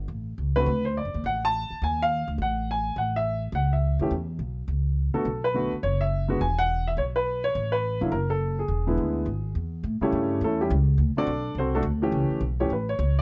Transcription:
0.08 upright bass A1
0.38 upright bass C#2
0.56 grand piano D3 A3 C4 F#4 B4
0.66 upright bass D2
0.85 grand piano C5
0.97 grand piano D5
1.05 upright bass F#2
1.14 upright bass D#2
1.24 upright bass A1, grand piano F#5
1.45 grand piano A5
1.70 muted upright bass stroke
1.82 upright bass D#2, grand piano G#5
2.02 grand piano F5
2.28 upright bass D2
2.38 upright bass A1, grand piano F#5
2.71 grand piano G#5
2.96 upright bass A1, grand piano F#5
3.16 grand piano E5
3.52 upright bass C#2, grand piano F#5
3.73 grand piano E5
3.99 upright bass E2, grand piano E3 A3 C#4 G4
4.11 upright bass E2
4.39 upright bass B1
4.68 upright bass C#2
5.14 grand piano D3 A3 B3 F#4 A4, muted upright bass stroke
5.25 upright bass B1
5.44 grand piano B4
5.54 grand piano D3 A3 B3 F#4
5.73 muted upright bass stroke
5.83 upright bass F#1, grand piano C#5
6.01 grand piano E5
6.28 grand piano D3 G#3 B3 F#4
6.41 upright bass E1, grand piano G#5
6.59 grand piano F#5
6.87 grand piano E5
6.97 upright bass B1, grand piano C#5
7.16 grand piano B4
7.44 grand piano C#5
7.55 upright bass A1
7.72 grand piano B4
8.01 upright bass F1, grand piano D3 F#3 A#3 E4
8.12 upright bass F#1, grand piano A#4
8.30 grand piano A4
8.59 grand piano G#4
8.68 upright bass E1
8.87 grand piano D3 G#3 B3 E4
8.98 upright bass D2
9.26 upright bass G#1
9.55 upright bass E2
9.83 upright bass A2
10.01 grand piano C#3 G3 A3 C#4 E4 G4 A4 C#5, muted upright bass stroke
10.12 upright bass G2
10.41 upright bass E2, grand piano A3 C#4 E4 A4
10.61 grand piano G3 C#4 E4 G4
10.70 upright bass C#2
10.98 upright bass D2
11.16 grand piano D3 A3 C4 D4 F#4 A4 D5, muted upright bass stroke
11.27 upright bass B1
11.55 upright bass C2, grand piano C5
11.59 grand piano C4 F#4 A4
11.75 grand piano A3 D4 F#4 A4
11.83 upright bass D2
12.02 grand piano E3 A3 C#4 G4
12.12 upright bass C#2
12.30 muted upright bass stroke
12.41 upright bass B1
12.60 grand piano E3 A3 C#4 G4 C#5
12.70 upright bass A1, grand piano B4
12.89 grand piano C#5
12.99 upright bass C#2
13.19 grand piano D5

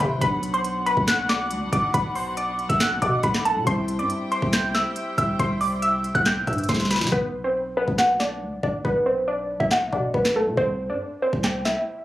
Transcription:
Already playing: grand piano C4 E4, string section E4 G4 C5 G5
0.00 808-style bass C3, synth pluck B5, closed hi-hat
0.18 808-style bass B1, grand piano F#3 B3, string section B3 D4 F#4 F#5, synth pluck B5, kick, closed hi-hat
0.25 grand piano D4
0.43 closed hi-hat, open hi-hat
0.54 synth pluck C6, closed hi-hat
0.64 closed hi-hat
0.86 synth pluck B5, closed hi-hat
0.97 808-style bass B1, kick
1.08 synth pluck F#6, snare, clap, closed hi-hat
1.29 synth pluck D6, snare, clap
1.51 808-style bass D2, closed hi-hat
1.62 808-style bass B1
1.73 808-style bass B1, synth pluck D6, kick, closed hi-hat
1.94 808-style bass B1, synth pluck B5, kick, closed hi-hat
2.15 synth pluck C6, open hi-hat
2.37 synth pluck D6, closed hi-hat
2.59 closed hi-hat
2.69 808-style bass B1, synth pluck E6, kick, closed hi-hat
2.80 synth pluck F#6, snare, clap, closed hi-hat
3.02 808-style bass B2, synth pluck D6, kick, closed hi-hat
3.23 808-style bass B1, synth pluck B5, kick, closed hi-hat
3.34 snare, clap
3.45 synth pluck A5, closed hi-hat
3.56 808-style bass B2
3.63 808-style bass C2, grand piano G3 C4, string section E4 G4 C5 G5, synth pluck C6, kick, closed hi-hat
3.70 grand piano E4
3.88 closed hi-hat, open hi-hat
3.99 808-style bass G2, synth pluck D6, closed hi-hat
4.10 closed hi-hat
4.32 synth pluck C6, closed hi-hat
4.42 808-style bass C2, kick
4.53 synth pluck G6, snare, clap, closed hi-hat
4.75 synth pluck E6, snare, clap
4.96 closed hi-hat
5.18 808-style bass C2, synth pluck E6, kick, closed hi-hat
5.39 808-style bass C2, synth pluck C6, kick, closed hi-hat
5.61 synth pluck D6, open hi-hat
5.82 synth pluck E6, closed hi-hat
6.04 closed hi-hat
6.15 808-style bass C2, synth pluck F#6, kick, closed hi-hat
6.26 synth pluck G6, snare, clap, closed hi-hat
6.37 808-style bass B1
6.47 808-style bass G2, synth pluck E6, kick, closed hi-hat
6.53 closed hi-hat
6.58 closed hi-hat
6.64 closed hi-hat
6.69 808-style bass C2, synth pluck C6, kick, snare, closed hi-hat
6.74 snare
6.80 snare
6.85 snare
6.91 synth pluck B5, snare, closed hi-hat
6.96 snare
7.01 808-style bass C3, snare
7.07 snare
7.12 808-style bass B1, synth pluck B4, kick
7.44 synth pluck C5
7.77 synth pluck B4
7.88 808-style bass B1, kick
7.98 synth pluck F#5, snare, clap
8.20 synth pluck D5, snare, clap
8.42 808-style bass D2
8.52 808-style bass B1
8.63 808-style bass B1, synth pluck D5, kick
8.85 808-style bass B1, synth pluck B4, kick
9.06 synth pluck C5
9.28 synth pluck D5
9.60 808-style bass B1, synth pluck E5, kick
9.71 synth pluck F#5, snare, clap
9.93 808-style bass B2, synth pluck D5, kick
10.14 808-style bass B1, synth pluck B4, kick
10.25 snare, clap
10.36 synth pluck A4
10.47 808-style bass B2
10.57 808-style bass C2, synth pluck C5, kick
10.90 808-style bass G2, synth pluck D5
11.22 synth pluck C5
11.33 808-style bass C2, kick
11.44 synth pluck G5, snare, clap
11.65 synth pluck E5, snare, clap

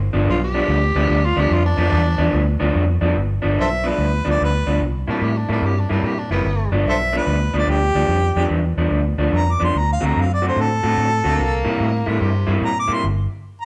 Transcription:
0.13 fingered electric bass G1, clean electric guitar G2 F3 B3 D4
0.27 fingered electric bass B1, tenor saxophone F4
0.44 tenor saxophone G4
0.54 clean electric guitar G2 F3 B3 D4
0.68 fingered electric bass D2
0.95 fingered electric bass D2, clean electric guitar G2 F3 B3 D4
1.09 fingered electric bass D2
1.25 tenor saxophone F4
1.36 fingered electric bass D2, clean electric guitar G2 F3 B3 D4
1.40 tenor saxophone G4
1.50 fingered electric bass F2, tenor saxophone F4
1.66 tenor saxophone D4
1.77 fingered electric bass F2, clean electric guitar G2 F3 B3 D4
1.92 fingered electric bass E2
2.18 fingered electric bass E2, clean electric guitar G2 F3 B3 D4
2.33 fingered electric bass D2
2.60 fingered electric bass D2, clean electric guitar G2 F3 B3 D4
2.75 fingered electric bass F2
3.01 fingered electric bass F2, clean electric guitar G2 F3 B3 D4
3.15 fingered electric bass G1
3.42 fingered electric bass G1, clean electric guitar G2 F3 B3 D4
3.58 fingered electric bass B1, harmonica A4 C5 E5
3.84 clean electric guitar G2 F3 B3 D4
3.88 harmonica B4
3.98 fingered electric bass D2
4.25 fingered electric bass D2, clean electric guitar G2 F3 B3 D4
4.30 harmonica D5
4.41 fingered electric bass D2, harmonica B4
4.67 fingered electric bass D2, clean electric guitar G2 F3 B3 D4
4.80 fingered electric bass C2
5.08 fingered electric bass A#2, clean electric guitar C3 G3 A#3 E4, tenor saxophone D4
5.22 fingered electric bass A2, tenor saxophone G4
5.37 tenor saxophone D4
5.49 fingered electric bass A2, clean electric guitar C3 G3 A#3 E4, tenor saxophone D4
5.62 fingered electric bass G2, tenor saxophone G4
5.80 tenor saxophone D4
5.89 fingered electric bass G2, clean electric guitar C3 G3 A#3 E4, tenor saxophone D4
6.03 fingered electric bass A#2, tenor saxophone G4
6.19 tenor saxophone D4
6.30 fingered electric bass F#1, clean electric guitar C3 G3 A#3 E4, tenor saxophone B3
6.45 fingered electric bass G1
6.72 fingered electric bass G1, clean electric guitar G2 F3 B3 D4
6.86 fingered electric bass B1, harmonica A4 C5 E5
7.13 clean electric guitar G2 F3 B3 D4
7.17 harmonica B4
7.27 fingered electric bass D2
7.54 fingered electric bass D2, clean electric guitar G2 F3 B3 D4
7.58 harmonica D5
7.67 fingered electric bass D2, harmonica G4
7.95 fingered electric bass D2, clean electric guitar G2 F3 B3 D4
8.08 fingered electric bass F2
8.36 fingered electric bass F2, clean electric guitar G2 F3 B3 D4
8.50 fingered electric bass E2
8.77 fingered electric bass E2, clean electric guitar G2 F3 B3 D4
8.91 fingered electric bass D2
9.18 fingered electric bass D2, clean electric guitar G2 F3 B3 D4
9.33 fingered electric bass F2
9.37 harmonica A#5
9.52 harmonica D6
9.60 fingered electric bass F2, clean electric guitar G2 F3 B3 D4
9.64 harmonica C6
9.75 fingered electric bass D2, harmonica A#5
9.92 harmonica F5
10.01 fingered electric bass D2, clean electric guitar D3 A3 C4 F#4
10.06 harmonica A#5
10.16 fingered electric bass F#2
10.21 harmonica F5
10.34 harmonica D5
10.42 clean electric guitar D3 A3 C4 F#4
10.48 harmonica C5
10.57 fingered electric bass A2
10.61 harmonica A4
10.83 fingered electric bass A2, clean electric guitar D3 A3 C4 F#4
10.97 fingered electric bass A2
11.24 fingered electric bass D2, clean electric guitar D3 A3 C4 F#4, tenor saxophone A#3
11.40 fingered electric bass C2
11.65 fingered electric bass A#2, clean electric guitar C3 G3 A#3 E4
11.80 fingered electric bass A2
12.06 fingered electric bass A2, clean electric guitar C3 G3 A#3 E4, tenor saxophone D3
12.20 fingered electric bass G2, tenor saxophone C3
12.47 fingered electric bass G2, clean electric guitar C3 G3 A#3 E4
12.62 fingered electric bass A#2, harmonica A#5
12.79 harmonica D6
12.88 fingered electric bass A#2, clean electric guitar C3 G3 A#3 E4
12.93 harmonica C6
13.04 fingered electric bass G1
13.61 harmonica A#5

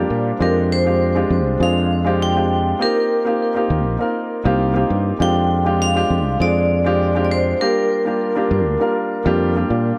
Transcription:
Already playing: grand piano G3 A#3 D4 F4 G4
0.10 fretless electric bass A#2
0.39 fretless electric bass F2, grand piano G#3 C4 D4 F4 G4, vibraphone A#4
0.72 vibraphone C5
0.85 grand piano G#3 C4 D4 F4 G4
1.15 grand piano G#3 C4 D4 F4 G4
1.30 fretless electric bass F2
1.46 fretless electric bass C2
1.59 fretless electric bass F2, grand piano G#3 C4 D4 F4 G#4, vibraphone F5
2.05 grand piano G#3 C4 D4 F4 G4
2.22 vibraphone G5
2.35 grand piano G#3 C4 D4 F4 G4
2.79 grand piano A#3 C4 D#4 F4 G4, vibraphone A#4
3.25 grand piano A#3 C4 D#4 F4 G4
3.55 grand piano A#3 C4 D#4 F4 G4
3.70 fretless electric bass D#2
3.86 fretless electric bass A#1
3.99 grand piano A#3 C4 D#4 F4 A#4
4.44 fretless electric bass C2, grand piano A#3 C4 D#4 F4 G4
4.74 grand piano A#3 C4 D#4 F4 G4
4.90 fretless electric bass G2
5.19 fretless electric bass F2, grand piano G#3 C4 D4 F4 G4, vibraphone G5
5.64 grand piano G#3 C4 D4 F4 G4
5.82 vibraphone F5
5.95 grand piano G#3 C4 D4 F4 G4
6.10 fretless electric bass F2
6.25 fretless electric bass C2
6.39 fretless electric bass F2, grand piano G#3 C4 D4 F4 G#4, vibraphone D5
6.84 grand piano G#3 C4 D4 F4 G4
7.14 grand piano G#3 C4 D4 F4 G4
7.25 vibraphone D5
7.32 vibraphone C5
7.60 grand piano G3 A#3 D4 F4 G4, vibraphone A#4
8.05 grand piano G3 A#3 D4 F4 G4
8.35 grand piano G3 A#3 D4 F4 G4
8.51 fretless electric bass G2
8.66 fretless electric bass D2
8.79 grand piano G3 A#3 D4 F4 A#4
9.25 fretless electric bass F2, grand piano G3 A#3 D4 F4 G4
9.55 grand piano G3 A#3 D4 F4 G4
9.70 fretless electric bass A#2

